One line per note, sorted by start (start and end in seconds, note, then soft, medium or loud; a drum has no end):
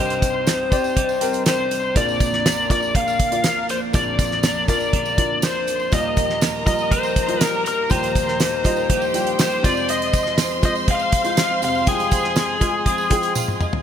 0.00 1.92 C2 medium
0.00 1.92 G2 medium
0.00 0.46 C3 medium
0.00 0.45 G3 medium
0.00 0.46 C4 loud
0.00 0.71 C4 medium
0.00 0.47 D#4 loud
0.00 0.47 G4 loud
0.00 0.71 G4 medium
0.00 1.43 C5 medium
0.00 1.98 D#5 medium
0.00 1.97 F5 medium
0.10 closed hi-hat medium
0.10 tambourine soft
0.22 kick medium
0.22 closed hi-hat medium
0.22 tambourine medium
0.46 0.71 G3 medium
0.46 0.72 C4 medium
0.46 0.71 D#4 medium
0.46 0.70 G4 medium
0.46 snare loud
0.46 closed hi-hat medium
0.46 tambourine medium
0.71 1.07 C4 medium
0.71 0.96 C4 soft
0.71 0.96 D#4 medium
0.71 0.96 G4 medium
0.71 1.07 G4 medium
0.71 1.08 D5 medium
0.71 kick medium
0.71 closed hi-hat medium
0.71 tambourine medium
0.84 tambourine soft
0.96 1.46 C3 medium
0.96 1.44 G3 medium
0.96 1.45 C4 medium
0.96 1.46 D#4 medium
0.96 1.47 G4 medium
0.96 kick medium
0.96 closed hi-hat medium
1.09 tambourine soft
1.21 1.75 C4 medium
1.21 1.75 G4 medium
1.21 1.75 A#4 medium
1.21 closed hi-hat medium
1.21 tambourine soft
1.33 closed hi-hat medium
1.33 tambourine soft
1.45 1.95 G3 medium
1.45 1.95 C4 medium
1.45 1.95 D#4 medium
1.45 1.96 G4 medium
1.45 1.93 C5 medium
1.45 snare loud
1.45 closed hi-hat medium
1.45 tambourine medium
1.71 closed hi-hat medium
1.71 tambourine soft
1.94 3.90 A#1 medium
1.94 3.90 F2 medium
1.94 2.45 A#2 medium
1.94 2.45 D3 loud
1.94 2.44 F3 loud
1.94 2.49 A#3 medium
1.94 2.45 A#3 loud
1.94 2.45 D4 loud
1.94 2.50 F4 medium
1.94 2.47 A#4 loud
1.94 2.50 D5 medium
1.94 2.70 D5 medium
1.94 kick loud
1.94 closed hi-hat medium
1.94 tambourine soft
2.08 tambourine soft
2.20 kick medium
2.20 closed hi-hat medium
2.20 tambourine medium
2.33 snare soft
2.45 2.95 F3 medium
2.45 2.95 A#3 medium
2.45 2.95 D4 medium
2.45 2.96 A#4 medium
2.45 snare loud
2.45 closed hi-hat medium
2.45 tambourine medium
2.69 3.15 A#3 medium
2.69 3.15 F4 medium
2.69 3.15 D5 medium
2.69 2.94 D5 medium
2.69 kick medium
2.69 closed hi-hat medium
2.69 tambourine soft
2.82 tambourine soft
2.95 3.44 A#2 medium
2.95 3.44 D3 medium
2.95 3.43 F3 medium
2.95 3.44 A#3 medium
2.95 3.44 D4 medium
2.95 3.46 A#4 medium
2.95 3.66 F5 loud
2.95 kick medium
2.95 closed hi-hat medium
3.08 tambourine soft
3.19 kick medium
3.19 closed hi-hat medium
3.19 tambourine soft
3.31 3.77 A#3 medium
3.31 3.77 F4 medium
3.31 3.77 D5 medium
3.31 closed hi-hat medium
3.31 tambourine soft
3.44 3.69 F3 medium
3.44 3.69 A#3 medium
3.44 3.68 D4 medium
3.44 3.67 A#4 medium
3.44 snare loud
3.44 closed hi-hat medium
3.44 tambourine medium
3.68 3.93 F3 soft
3.68 3.93 A#3 soft
3.68 3.93 D4 soft
3.68 3.94 A#4 soft
3.68 3.77 C5 medium
3.68 closed hi-hat medium
3.68 tambourine soft
3.93 5.88 A#1 medium
3.93 5.88 F2 medium
3.93 4.43 A#2 medium
3.93 4.43 D3 medium
3.93 4.42 F3 medium
3.93 4.47 A#3 medium
3.93 4.43 A#3 medium
3.93 4.43 D4 medium
3.93 4.48 F4 medium
3.93 4.45 A#4 medium
3.93 4.48 D5 medium
3.93 4.65 D5 medium
3.93 kick loud
3.93 closed hi-hat medium
3.93 tambourine soft
4.19 kick medium
4.19 closed hi-hat medium
4.19 tambourine medium
4.31 snare soft
4.42 4.68 F3 medium
4.42 4.68 A#3 medium
4.42 4.67 D4 medium
4.42 4.66 A#4 medium
4.42 snare loud
4.42 closed hi-hat medium
4.42 tambourine medium
4.67 4.93 F3 soft
4.67 5.04 A#3 medium
4.67 4.93 A#3 soft
4.67 4.93 D4 medium
4.67 5.04 F4 medium
4.67 4.93 A#4 medium
4.67 5.04 A#4 medium
4.67 5.46 D5 medium
4.67 kick medium
4.67 closed hi-hat medium
4.67 tambourine soft
4.80 tambourine soft
4.93 5.43 A#2 medium
4.93 5.43 D3 medium
4.93 5.41 F3 medium
4.93 5.42 A#3 medium
4.93 5.43 D4 medium
4.93 5.44 A#4 medium
4.93 kick medium
4.93 closed hi-hat medium
5.05 tambourine soft
5.17 5.71 A#3 medium
5.17 5.72 F4 medium
5.17 5.72 D5 medium
5.17 kick medium
5.17 closed hi-hat medium
5.17 tambourine soft
5.42 5.92 F3 medium
5.42 5.92 A#3 medium
5.42 5.93 D4 medium
5.42 5.93 A#4 medium
5.42 5.95 C5 medium
5.42 snare loud
5.42 closed hi-hat medium
5.42 tambourine medium
5.67 closed hi-hat medium
5.67 tambourine soft
5.80 tambourine soft
5.91 7.87 D#2 medium
5.91 7.87 A#2 medium
5.91 6.42 D#3 medium
5.91 6.41 F3 medium
5.91 6.46 G3 medium
5.91 6.41 A#3 medium
5.91 6.42 D#4 medium
5.91 6.46 F4 medium
5.91 6.43 G4 loud
5.91 8.86 A#4 medium
5.91 5.99 D5 medium
5.91 6.39 D#5 medium
5.91 8.86 A#5 medium
5.91 kick loud
5.91 closed hi-hat medium
5.91 tambourine soft
5.99 6.49 D#5 medium
6.17 kick medium
6.17 closed hi-hat medium
6.17 tambourine medium
6.30 snare soft
6.41 6.91 F3 medium
6.41 6.91 A#3 medium
6.41 6.91 D#4 medium
6.41 6.91 G4 medium
6.41 snare loud
6.41 closed hi-hat medium
6.41 tambourine medium
6.65 7.11 G3 medium
6.65 7.11 F4 medium
6.65 7.12 D#5 medium
6.65 6.92 D#5 loud
6.65 kick medium
6.65 closed hi-hat medium
6.65 tambourine soft
6.79 tambourine soft
6.91 7.41 D#3 medium
6.91 7.39 F3 medium
6.91 7.40 A#3 medium
6.91 7.40 D#4 loud
6.91 7.41 G4 medium
6.91 7.44 C5 loud
6.91 kick medium
6.91 closed hi-hat medium
7.03 tambourine soft
7.16 kick medium
7.16 closed hi-hat medium
7.16 tambourine soft
7.28 7.73 G3 medium
7.28 7.73 F4 medium
7.28 7.74 D#5 medium
7.28 closed hi-hat medium
7.40 7.65 F3 medium
7.40 7.66 A#3 medium
7.40 7.65 D#4 medium
7.40 7.64 G4 medium
7.40 7.62 A#4 loud
7.40 snare loud
7.40 closed hi-hat medium
7.40 tambourine medium
7.65 7.89 A#3 soft
7.65 7.90 D#4 soft
7.65 7.90 G4 soft
7.65 7.90 A#4 medium
7.65 closed hi-hat medium
7.65 tambourine soft
7.89 9.60 D#2 medium
7.89 9.60 A#2 medium
7.89 8.40 D#3 medium
7.89 8.39 F3 medium
7.89 8.44 G3 medium
7.89 8.39 A#3 medium
7.89 8.40 D#4 loud
7.89 8.44 F4 medium
7.89 8.45 G4 medium
7.89 8.41 G4 loud
7.89 9.40 C5 loud
7.89 kick loud
7.89 closed hi-hat medium
7.89 tambourine soft
8.03 closed hi-hat soft
8.03 tambourine soft
8.15 kick medium
8.15 closed hi-hat medium
8.15 tambourine medium
8.28 snare soft
8.39 8.89 F3 medium
8.39 8.89 A#3 medium
8.39 8.89 D#4 medium
8.39 8.90 G4 medium
8.39 snare loud
8.39 closed hi-hat medium
8.39 tambourine medium
8.64 9.01 G3 medium
8.64 9.01 F4 medium
8.64 9.01 D#5 medium
8.64 kick medium
8.64 closed hi-hat medium
8.64 tambourine medium
8.76 tambourine soft
8.89 9.39 D#3 medium
8.89 9.38 F3 medium
8.89 9.38 A#3 medium
8.89 9.39 D#4 medium
8.89 9.63 G4 medium
8.89 9.40 G4 loud
8.89 9.63 G5 medium
8.89 kick medium
8.89 closed hi-hat medium
9.02 tambourine soft
9.14 9.64 G3 medium
9.14 9.62 F4 medium
9.14 9.64 G4 loud
9.14 closed hi-hat medium
9.14 tambourine soft
9.27 closed hi-hat soft
9.38 9.64 F3 medium
9.38 9.64 A#3 medium
9.38 9.63 D#4 medium
9.38 9.63 G4 medium
9.38 9.64 C5 medium
9.38 snare loud
9.38 closed hi-hat medium
9.38 tambourine medium
9.63 11.58 F2 medium
9.63 11.58 C3 medium
9.63 10.37 F3 medium
9.63 10.43 G#3 medium
9.63 10.39 C4 medium
9.63 10.43 F4 medium
9.63 10.38 F4 medium
9.63 10.38 G#4 medium
9.63 10.43 C5 medium
9.63 13.57 C5 medium
9.63 9.90 D5 medium
9.63 13.57 C6 medium
9.63 kick medium
9.63 closed hi-hat medium
9.63 tambourine soft
9.77 tambourine soft
9.88 10.36 D#5 medium
9.88 closed hi-hat medium
9.88 tambourine soft
10.02 closed hi-hat soft
10.13 kick medium
10.13 closed hi-hat medium
10.13 tambourine medium
10.26 snare soft
10.38 10.86 F3 medium
10.38 10.88 C4 medium
10.38 10.88 F4 medium
10.38 10.89 G#4 medium
10.38 snare loud
10.38 closed hi-hat medium
10.38 tambourine medium
10.62 11.08 G#3 medium
10.62 11.08 F4 medium
10.62 11.08 C5 medium
10.62 10.72 D#5 medium
10.62 kick medium
10.62 closed hi-hat medium
10.62 tambourine soft
10.75 tambourine soft
10.88 11.36 F3 medium
10.88 11.38 C4 medium
10.88 11.37 F4 medium
10.88 11.38 G#4 loud
10.88 11.60 F5 loud
10.88 kick medium
10.88 closed hi-hat medium
10.99 tambourine soft
11.12 kick medium
11.12 closed hi-hat medium
11.12 tambourine soft
11.24 11.70 G#3 medium
11.24 11.70 F4 medium
11.24 11.70 C5 medium
11.24 closed hi-hat medium
11.24 tambourine soft
11.37 11.85 F3 medium
11.37 11.87 C4 medium
11.37 11.87 F4 medium
11.37 11.87 G#4 medium
11.37 snare loud
11.37 closed hi-hat medium
11.37 tambourine medium
11.62 13.57 F2 medium
11.62 13.57 C3 medium
11.62 11.87 F5 medium
11.62 closed hi-hat medium
11.62 tambourine soft
11.75 tambourine soft
11.86 12.35 F3 medium
11.86 11.93 G3 medium
11.86 12.36 C4 medium
11.86 12.41 F4 medium
11.86 12.36 F4 loud
11.86 13.33 G#4 medium
11.86 12.37 G#4 loud
11.86 12.41 G5 medium
11.86 kick loud
11.86 closed hi-hat medium
11.86 tambourine soft
11.92 12.44 G#3 medium
11.99 closed hi-hat medium
11.99 tambourine soft
12.11 kick medium
12.11 closed hi-hat medium
12.11 tambourine medium
12.24 snare soft
12.36 12.84 F3 medium
12.36 12.85 C4 medium
12.36 12.85 F4 medium
12.36 12.86 G#4 medium
12.36 snare loud
12.36 closed hi-hat medium
12.36 tambourine medium
12.60 12.97 G#3 medium
12.60 12.97 F4 medium
12.60 12.98 G#4 medium
12.60 kick medium
12.60 closed hi-hat medium
12.60 tambourine medium
12.85 13.33 F3 medium
12.85 13.35 C4 medium
12.85 13.35 F4 medium
12.85 13.36 G#4 medium
12.85 kick medium
12.85 closed hi-hat medium
12.98 tambourine soft
13.10 13.65 G#3 medium
13.10 13.65 F4 medium
13.10 13.65 G#4 medium
13.10 13.34 G5 medium
13.10 kick medium
13.10 closed hi-hat medium
13.10 tambourine soft
13.23 closed hi-hat soft
13.23 tambourine soft
13.34 13.60 F3 medium
13.34 13.61 C4 medium
13.34 13.60 F4 medium
13.34 13.58 G#4 medium
13.34 13.59 F5 medium
13.34 high tom medium
13.34 tambourine medium
13.48 mid tom medium
13.60 13.82 C4 soft
13.60 13.82 F4 soft
13.60 13.82 G#4 soft
13.60 13.82 D#5 medium
13.60 mid tom medium
13.60 tambourine soft
13.73 floor tom medium